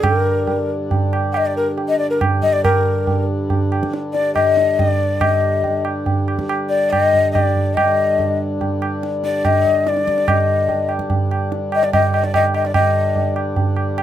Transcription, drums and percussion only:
0.04 tabla na, tabla ge
0.47 tabla tin, tabla ge
0.91 tabla tin, tabla ge
1.13 tabla na
1.34 tabla na
1.78 tabla tin
2.21 tabla na, tabla ge
2.42 tabla ge
2.65 tabla na, tabla ge
3.07 tabla tin, tabla ge
3.50 tabla tin, tabla ge
3.72 tabla na
3.83 tabla ke
3.94 tabla te
4.15 tabla te
4.36 tabla na, tabla ge
4.57 tabla te
4.79 tabla tin, tabla ge
5.21 tabla na, tabla ge
5.64 tabla tin, tabla ge
5.85 tabla na
6.06 tabla tin, tabla ge
6.28 tabla na
6.39 tabla ke
6.49 tabla na
6.93 tabla na, tabla ge
7.13 tabla ge
7.35 tabla na, tabla ge
7.56 tabla ge
7.77 tabla na, tabla ge
8.19 tabla tin, tabla ge
8.61 tabla tin, tabla ge
8.82 tabla na
9.03 tabla te
9.24 tabla te
9.45 tabla na, tabla ge
9.66 tabla ge
9.87 tabla te
9.97 tabla te
10.08 tabla ke
10.18 tabla te
10.28 tabla na, tabla ge
10.69 tabla tin, tabla ge
10.89 tabla na
10.99 tabla ke
11.10 tabla tin, tabla ge
11.31 tabla na
11.52 tabla te
11.72 tabla na
11.83 tabla te
11.93 tabla na, tabla ge
12.14 tabla na
12.24 tabla te
12.34 tabla na, tabla ge
12.55 tabla na
12.65 tabla te
12.74 tabla na, tabla ge
13.16 tabla tin, tabla ge
13.36 tabla na
13.56 tabla tin, tabla ge
13.76 tabla na
13.98 tabla na

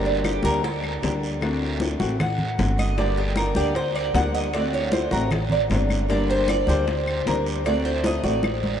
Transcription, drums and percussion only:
0.05 high conga
0.24 high bongo, high conga, short guiro, claves
0.43 high conga, short guiro
0.64 high bongo, high conga, long guiro
0.82 high conga, claves
1.02 high bongo, low bongo, high conga, short guiro
1.23 short guiro
1.41 high bongo, high conga, long guiro, claves
1.61 high bongo, high conga
1.80 high bongo, high conga, short guiro
2.00 high bongo, high conga, short guiro
2.20 high bongo, high conga, low conga, long guiro, claves
2.38 high conga, low conga
2.59 high bongo, low bongo, high conga, short guiro
2.78 high bongo, high conga, short guiro, claves
2.97 high bongo, high conga, long guiro
3.17 high conga
3.36 high bongo, high conga, short guiro, claves
3.55 high conga, short guiro
3.75 high bongo, high conga, long guiro
3.94 high conga, claves
4.14 high bongo, low bongo, high conga, short guiro
4.34 short guiro
4.54 high bongo, high conga, long guiro, claves
4.73 high bongo, high conga
4.92 high bongo, high conga, short guiro
5.11 high bongo, high conga, short guiro
5.31 high bongo, high conga, low conga, long guiro, claves
5.50 high conga, low conga
5.70 high bongo, low bongo, high conga, short guiro
5.89 high bongo, high conga, short guiro, claves
6.09 high bongo, high conga, long guiro
6.29 high conga
6.48 high bongo, high conga, short guiro, claves
6.67 high conga, short guiro
6.87 high bongo, high conga, long guiro
7.06 high conga, claves
7.25 high bongo, low bongo, high conga, short guiro
7.46 short guiro
7.65 high bongo, high conga, long guiro, claves
7.85 high bongo, high conga
8.04 high bongo, high conga, short guiro
8.24 high conga, short guiro
8.43 high bongo, high conga, long guiro, claves
8.64 high conga

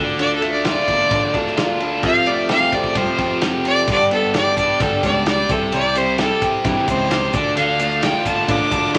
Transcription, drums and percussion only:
0.19 ride
0.42 ride
0.65 snare, ride
0.88 kick, ride
1.11 kick, ride
1.34 kick, ride
1.47 snare
1.57 snare, ride
1.80 ride
2.03 kick, ride
2.26 ride
2.49 snare, ride
2.72 kick, ride
2.84 kick
2.95 kick, ride
3.18 kick, ride
3.41 snare, ride
3.65 ride
3.87 kick, ride, shaker
4.11 ride
4.22 shaker
4.34 snare, ride, shaker
4.57 kick, ride, shaker
4.80 kick, ride, shaker
5.03 kick, snare, ride, shaker
5.26 snare, ride, shaker
5.49 kick, ride, shaker
5.72 ride, shaker
5.95 ride, shaker
6.07 shaker
6.18 snare, ride, shaker
6.41 kick, ride, shaker
6.64 kick, ride, shaker
6.88 kick, ride, shaker
7.11 snare, ride, shaker
7.33 kick, ride, shaker
7.56 ride, shaker
7.79 ride, shaker
7.91 shaker
8.02 snare, ride, shaker
8.25 kick, ride, shaker
8.48 kick, ride, shaker
8.71 kick, ride, shaker
8.84 snare
8.94 snare, ride, shaker

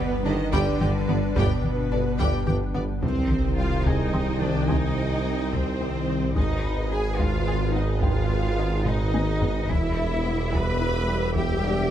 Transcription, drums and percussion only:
0.53 taiko
0.81 taiko mid
1.09 taiko mid
1.36 taiko
1.64 taiko mid
2.20 taiko
2.48 taiko mid
2.75 taiko mid
3.03 taiko
3.31 taiko mid
3.86 taiko
4.14 taiko mid
4.42 taiko mid
4.69 taiko
5.53 taiko
6.36 taiko
7.19 taiko
8.03 taiko
8.86 taiko low-mid
9.14 taiko high
9.42 taiko low
9.69 taiko
10.53 taiko
11.36 taiko

